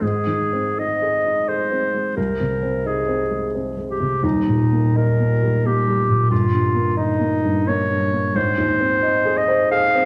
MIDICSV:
0, 0, Header, 1, 3, 480
1, 0, Start_track
1, 0, Key_signature, -4, "major"
1, 0, Tempo, 772201
1, 10, Time_signature, 3, 2, 24, 8
1, 490, Tempo, 689655
1, 2890, Tempo, 723764
1, 3370, Tempo, 669643
1, 4810, Tempo, 686499
1, 6965, End_track
2, 0, Start_track
2, 0, Title_t, "Clarinet"
2, 0, Program_c, 0, 71
2, 13, Note_on_c, 0, 68, 69
2, 493, Note_on_c, 0, 75, 77
2, 503, Note_off_c, 0, 68, 0
2, 976, Note_on_c, 0, 72, 70
2, 987, Note_off_c, 0, 75, 0
2, 1446, Note_off_c, 0, 72, 0
2, 1450, Note_on_c, 0, 70, 75
2, 1938, Note_on_c, 0, 68, 65
2, 1948, Note_off_c, 0, 70, 0
2, 2417, Note_off_c, 0, 68, 0
2, 2659, Note_on_c, 0, 67, 67
2, 2894, Note_on_c, 0, 63, 74
2, 2904, Note_off_c, 0, 67, 0
2, 3377, Note_on_c, 0, 70, 80
2, 3388, Note_off_c, 0, 63, 0
2, 3873, Note_on_c, 0, 67, 77
2, 3883, Note_off_c, 0, 70, 0
2, 4332, Note_off_c, 0, 67, 0
2, 4336, Note_on_c, 0, 65, 84
2, 4810, Note_on_c, 0, 63, 87
2, 4820, Note_off_c, 0, 65, 0
2, 5306, Note_on_c, 0, 73, 100
2, 5317, Note_off_c, 0, 63, 0
2, 5782, Note_on_c, 0, 72, 84
2, 5793, Note_off_c, 0, 73, 0
2, 6492, Note_on_c, 0, 75, 100
2, 6503, Note_off_c, 0, 72, 0
2, 6725, Note_off_c, 0, 75, 0
2, 6729, Note_on_c, 0, 77, 106
2, 6965, Note_off_c, 0, 77, 0
2, 6965, End_track
3, 0, Start_track
3, 0, Title_t, "Grand piano"
3, 0, Program_c, 1, 0
3, 0, Control_c, 1, 64, 127
3, 6, Note_on_c, 1, 32, 43
3, 14, Note_on_c, 1, 44, 45
3, 23, Control_c, 1, 64, 0
3, 135, Control_c, 1, 64, 127
3, 167, Note_on_c, 1, 51, 34
3, 329, Note_on_c, 1, 60, 35
3, 427, Note_off_c, 1, 51, 0
3, 486, Note_on_c, 1, 63, 38
3, 590, Note_off_c, 1, 60, 0
3, 652, Note_on_c, 1, 68, 38
3, 754, Note_off_c, 1, 63, 0
3, 814, Note_on_c, 1, 63, 38
3, 912, Note_off_c, 1, 68, 0
3, 974, Note_on_c, 1, 68, 37
3, 1071, Note_off_c, 1, 63, 0
3, 1136, Note_on_c, 1, 60, 33
3, 1230, Note_off_c, 1, 68, 0
3, 1293, Note_on_c, 1, 56, 35
3, 1390, Note_off_c, 1, 60, 0
3, 1424, Note_off_c, 1, 32, 0
3, 1429, Note_off_c, 1, 44, 0
3, 1451, Note_on_c, 1, 36, 48
3, 1453, Note_off_c, 1, 56, 0
3, 1466, Control_c, 1, 64, 0
3, 1565, Control_c, 1, 64, 127
3, 1613, Note_on_c, 1, 48, 32
3, 1770, Note_on_c, 1, 60, 37
3, 1869, Note_off_c, 1, 48, 0
3, 1927, Note_on_c, 1, 63, 42
3, 2029, Note_off_c, 1, 60, 0
3, 2087, Note_on_c, 1, 60, 37
3, 2187, Note_off_c, 1, 63, 0
3, 2245, Note_on_c, 1, 56, 39
3, 2347, Note_off_c, 1, 60, 0
3, 2410, Note_on_c, 1, 60, 40
3, 2506, Note_off_c, 1, 56, 0
3, 2566, Note_on_c, 1, 56, 36
3, 2666, Note_off_c, 1, 60, 0
3, 2726, Note_on_c, 1, 48, 38
3, 2823, Note_off_c, 1, 56, 0
3, 2861, Note_off_c, 1, 36, 0
3, 2883, Note_on_c, 1, 27, 44
3, 2888, Note_off_c, 1, 48, 0
3, 2889, Note_on_c, 1, 39, 48
3, 2900, Control_c, 1, 64, 0
3, 2993, Control_c, 1, 64, 127
3, 3046, Note_on_c, 1, 46, 36
3, 3210, Note_on_c, 1, 58, 41
3, 3307, Note_off_c, 1, 46, 0
3, 3368, Note_on_c, 1, 63, 44
3, 3474, Note_off_c, 1, 58, 0
3, 3540, Note_on_c, 1, 58, 39
3, 3639, Note_off_c, 1, 63, 0
3, 3709, Note_on_c, 1, 55, 41
3, 3802, Note_off_c, 1, 58, 0
3, 3869, Note_on_c, 1, 58, 43
3, 3964, Note_off_c, 1, 55, 0
3, 4029, Note_on_c, 1, 55, 40
3, 4121, Note_off_c, 1, 58, 0
3, 4180, Note_on_c, 1, 46, 40
3, 4277, Note_off_c, 1, 55, 0
3, 4305, Note_off_c, 1, 27, 0
3, 4308, Note_off_c, 1, 39, 0
3, 4335, Note_on_c, 1, 31, 54
3, 4337, Note_off_c, 1, 46, 0
3, 4350, Control_c, 1, 64, 0
3, 4447, Control_c, 1, 64, 127
3, 4490, Note_on_c, 1, 43, 38
3, 4648, Note_on_c, 1, 58, 42
3, 4744, Note_off_c, 1, 43, 0
3, 4810, Note_on_c, 1, 63, 50
3, 4905, Note_off_c, 1, 58, 0
3, 4969, Note_on_c, 1, 58, 47
3, 5072, Note_off_c, 1, 63, 0
3, 5137, Note_on_c, 1, 43, 46
3, 5237, Note_off_c, 1, 58, 0
3, 5304, Note_on_c, 1, 58, 50
3, 5400, Note_off_c, 1, 43, 0
3, 5465, Note_on_c, 1, 43, 44
3, 5560, Note_off_c, 1, 58, 0
3, 5620, Note_on_c, 1, 58, 41
3, 5717, Note_off_c, 1, 43, 0
3, 5750, Note_off_c, 1, 31, 0
3, 5774, Note_on_c, 1, 32, 57
3, 5778, Note_off_c, 1, 58, 0
3, 5789, Control_c, 1, 64, 0
3, 5892, Control_c, 1, 64, 127
3, 5935, Note_on_c, 1, 39, 42
3, 6094, Note_on_c, 1, 60, 45
3, 6188, Note_off_c, 1, 39, 0
3, 6248, Note_on_c, 1, 63, 54
3, 6347, Note_off_c, 1, 60, 0
3, 6407, Note_on_c, 1, 68, 54
3, 6504, Note_off_c, 1, 63, 0
3, 6566, Note_on_c, 1, 72, 55
3, 6664, Note_off_c, 1, 68, 0
3, 6730, Note_on_c, 1, 68, 57
3, 6824, Note_off_c, 1, 72, 0
3, 6896, Note_on_c, 1, 60, 50
3, 6965, Note_off_c, 1, 32, 0
3, 6965, Note_off_c, 1, 60, 0
3, 6965, Note_off_c, 1, 68, 0
3, 6965, End_track
0, 0, End_of_file